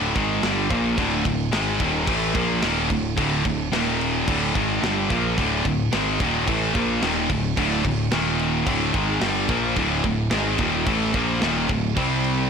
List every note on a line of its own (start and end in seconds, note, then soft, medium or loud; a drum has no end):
0.00 0.14 D1 loud
0.00 0.14 D2 loud
0.00 0.15 A2 loud
0.00 0.15 D3 loud
0.15 0.41 G#1 medium
0.15 0.42 G#2 medium
0.15 0.42 D#3 loud
0.15 0.42 G#3 loud
0.15 kick loud
0.15 crash medium
0.43 0.69 G1 loud
0.43 0.69 G2 loud
0.43 0.69 D3 loud
0.43 0.70 G3 loud
0.43 snare loud
0.43 crash medium
0.69 0.96 A#1 loud
0.69 0.96 A#2 medium
0.69 0.97 F3 medium
0.69 0.97 A#3 loud
0.69 kick loud
0.69 crash medium
0.97 1.24 D1 loud
0.97 1.23 D2 loud
0.97 1.23 A2 medium
0.97 1.25 D3 loud
0.97 kick loud
0.97 crash medium
1.24 1.51 D1 medium
1.24 1.47 D2 medium
1.24 1.47 A2 medium
1.24 kick loud
1.24 crash medium
1.52 1.78 G#1 medium
1.52 1.79 G#2 loud
1.52 1.79 D#3 loud
1.52 1.80 G#3 loud
1.52 snare loud
1.52 crash medium
1.80 2.06 D#1 loud
1.80 2.07 D#2 loud
1.80 2.07 A#2 loud
1.80 2.08 D#3 loud
1.80 kick loud
1.80 crash medium
2.07 2.33 A1 loud
2.07 2.34 A2 medium
2.07 2.34 E3 medium
2.07 2.35 A3 loud
2.07 kick loud
2.07 crash medium
2.34 2.61 A#1 loud
2.34 2.61 A#2 medium
2.34 2.62 F3 loud
2.34 2.62 A#3 loud
2.34 kick loud
2.34 crash medium
2.61 2.88 D#1 loud
2.61 2.89 D#2 loud
2.61 2.89 A#2 loud
2.61 2.89 D#3 medium
2.61 snare loud
2.61 crash medium
2.89 3.16 D1 medium
2.89 3.12 D2 medium
2.89 3.12 A2 medium
2.89 kick medium
2.89 crash medium
3.17 3.43 D1 loud
3.17 3.43 D2 medium
3.17 3.44 A2 loud
3.17 3.44 D3 loud
3.17 kick loud
3.17 crash medium
3.45 3.71 D1 medium
3.45 3.67 D2 medium
3.45 3.67 A2 medium
3.45 kick loud
3.45 crash medium
3.72 4.23 D#1 medium
3.72 4.26 D#2 medium
3.72 4.26 A#2 loud
3.72 4.27 D#3 loud
3.72 snare loud
3.72 crash medium
4.01 crash medium
4.27 4.53 D1 medium
4.27 4.54 D2 medium
4.27 4.54 A2 loud
4.27 4.54 D3 loud
4.27 kick loud
4.27 crash medium
4.55 4.81 G#1 loud
4.55 4.81 G#2 medium
4.55 4.82 D#3 loud
4.55 4.82 G#3 medium
4.55 kick loud
4.55 crash medium
4.82 5.07 G1 loud
4.82 5.09 G2 medium
4.82 5.09 D3 loud
4.82 5.10 G3 loud
4.82 snare loud
4.82 crash medium
5.10 5.35 A#1 loud
5.10 5.36 A#2 medium
5.10 5.37 F3 loud
5.10 5.37 A#3 loud
5.10 kick loud
5.10 crash medium
5.38 5.63 D1 loud
5.38 5.64 D2 medium
5.38 5.64 A2 medium
5.38 5.65 D3 medium
5.38 kick loud
5.38 crash medium
5.65 5.90 D1 medium
5.65 5.87 D2 medium
5.65 5.87 A2 medium
5.65 kick medium
5.65 crash medium
5.93 6.18 G#1 medium
5.93 6.19 G#2 medium
5.93 6.19 D#3 loud
5.93 6.20 G#3 loud
5.93 snare loud
5.93 crash medium
6.20 6.45 D#1 medium
6.20 6.47 D#2 medium
6.20 6.47 A#2 loud
6.20 6.47 D#3 loud
6.20 kick loud
6.20 crash medium
6.48 6.73 A1 medium
6.48 6.74 A2 medium
6.48 6.74 E3 loud
6.48 6.75 A3 medium
6.48 kick loud
6.48 crash medium
6.74 7.00 A#1 loud
6.74 7.01 A#2 medium
6.74 7.01 F3 medium
6.74 7.02 A#3 loud
6.74 kick loud
6.74 crash medium
7.02 7.27 D#1 loud
7.02 7.28 D#2 loud
7.02 7.29 A#2 loud
7.02 7.29 D#3 loud
7.02 snare loud
7.02 crash medium
7.30 7.55 D1 medium
7.30 7.52 D2 medium
7.30 7.52 A2 medium
7.30 kick medium
7.30 crash medium
7.57 7.83 D1 loud
7.57 7.84 D2 medium
7.57 7.84 A2 loud
7.57 7.84 D3 loud
7.57 kick loud
7.57 crash medium
7.85 8.10 D1 medium
7.85 8.07 D2 medium
7.85 8.07 A2 medium
7.85 kick medium
7.85 crash medium
8.11 8.63 D#1 medium
8.11 8.66 D#2 loud
8.11 8.66 A#2 medium
8.11 8.66 D#3 loud
8.11 snare loud
8.11 crash medium
8.39 crash medium
8.66 8.92 D1 loud
8.66 8.93 D2 medium
8.66 8.94 A2 medium
8.66 8.94 D3 loud
8.66 kick loud
8.66 crash medium
8.94 9.20 G#1 loud
8.94 9.21 G#2 medium
8.94 9.21 D#3 loud
8.94 9.21 G#3 medium
8.94 kick loud
8.94 crash medium
9.21 9.47 G1 loud
9.21 9.48 G2 loud
9.21 9.48 D3 loud
9.21 9.49 G3 loud
9.21 snare loud
9.21 crash medium
9.49 9.75 A#1 loud
9.49 9.76 A#2 medium
9.49 9.76 F3 loud
9.49 9.77 A#3 loud
9.49 kick loud
9.49 crash medium
9.76 10.02 D1 loud
9.76 10.03 D2 loud
9.76 10.04 A2 loud
9.76 10.04 D3 loud
9.76 kick loud
9.76 crash medium
10.04 10.30 D1 medium
10.04 10.27 D2 medium
10.04 10.27 A2 medium
10.04 kick loud
10.04 crash medium
10.31 10.57 G#1 medium
10.31 10.58 G#2 medium
10.31 10.59 D#3 medium
10.31 10.59 G#3 loud
10.31 snare loud
10.31 crash medium
10.58 10.85 D#1 loud
10.58 10.86 D#2 loud
10.58 10.86 A#2 loud
10.58 10.86 D#3 loud
10.58 kick loud
10.58 crash medium
10.87 11.12 A1 loud
10.87 11.13 A2 loud
10.87 11.14 E3 loud
10.87 11.14 A3 loud
10.87 kick loud
10.87 crash medium
11.13 11.40 A#1 loud
11.13 11.41 A#2 medium
11.13 11.41 F3 medium
11.13 11.42 A#3 loud
11.13 kick loud
11.13 crash medium
11.41 11.67 D#1 loud
11.41 11.69 D#2 medium
11.41 11.69 A#2 loud
11.41 11.69 D#3 loud
11.41 snare loud
11.41 crash medium
11.69 11.95 D1 medium
11.69 11.92 D2 medium
11.69 11.92 A2 medium
11.69 kick medium
11.69 crash medium
11.96 12.48 C2 loud
11.96 12.50 C3 loud
11.96 12.50 G3 loud
11.96 12.50 C4 loud
11.96 kick loud
11.96 crash medium
12.24 crash medium